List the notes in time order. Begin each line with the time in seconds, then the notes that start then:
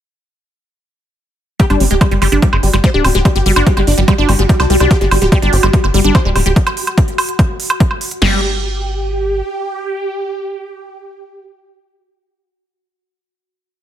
1.60 G3 F#4 G4, kick, closed hi-hat
1.70 G1 G3 D4, closed hi-hat, high woodblock
1.80 G1 G3 B3, open hi-hat
1.91 D1 G#3 G4, closed hi-hat
2.01 G3, kick, closed hi-hat, high woodblock
2.11 G1 G3, closed hi-hat
2.22 G1 G3 G4, open hi-hat, high woodblock
2.32 G1 G3 D4, closed hi-hat
2.42 G3 B3, kick, closed hi-hat
2.53 G1 G#3, high woodblock
2.63 G1 G3, open hi-hat
2.73 G1 G3, closed hi-hat, high woodblock
2.84 G3 C5, kick, closed hi-hat
2.94 D1 G3 D4
3.04 D1 G3 B3, open hi-hat, high woodblock
3.15 D1 G#3 G4, closed hi-hat
3.25 G3, kick, closed hi-hat, high woodblock
3.36 G1 G3 G4, closed hi-hat
3.46 G1 G3, open hi-hat
3.56 G1 D4 F#4, closed hi-hat, high woodblock
3.67 G3 B3, kick, closed hi-hat
3.77 G1 G3 G#3, closed hi-hat, high woodblock
3.87 G1 D4, open hi-hat
3.98 G1 G3, closed hi-hat
4.08 G3, kick, closed hi-hat, high woodblock
4.18 G1 D4
4.29 G1 G3 B3, open hi-hat, high woodblock
4.39 G1 G3 G#3, closed hi-hat
4.49 G3, kick, closed hi-hat
4.60 C2 G3 D4, high woodblock
4.70 C2 G3, open hi-hat
4.80 C2 G3 D4, closed hi-hat, high woodblock
4.91 B3 G4, kick, closed hi-hat
5.01 G1 G3 G#3, closed hi-hat
5.11 G1 G3, open hi-hat, high woodblock
5.22 D1 G3 G4, closed hi-hat
5.32 G3, kick, closed hi-hat, high woodblock
5.42 G1 G3 D4, closed hi-hat
5.53 G1 B3 G4, open hi-hat
5.63 G1 G3 G#3, high woodblock
5.73 G3, kick, closed hi-hat
5.84 G1 G3, high woodblock
5.94 G1 G3, open hi-hat
6.04 G1 G3 D4, closed hi-hat
6.15 B3 C5, kick, closed hi-hat, high woodblock
6.25 D1 G3 G#3
6.35 D1 G3, open hi-hat, high woodblock
6.46 D1 G3 G4, closed hi-hat
6.56 kick, closed hi-hat
6.67 closed hi-hat, high woodblock
6.77 open hi-hat
6.87 closed hi-hat, high woodblock
6.98 kick, closed hi-hat
7.08 closed hi-hat
7.18 open hi-hat, high woodblock
7.29 closed hi-hat
7.39 kick, closed hi-hat, high woodblock
7.60 open hi-hat
7.70 closed hi-hat, high woodblock
7.80 kick, closed hi-hat
7.91 high woodblock
8.01 open hi-hat
8.11 closed hi-hat
8.22 G1 G3 G4, snare, crash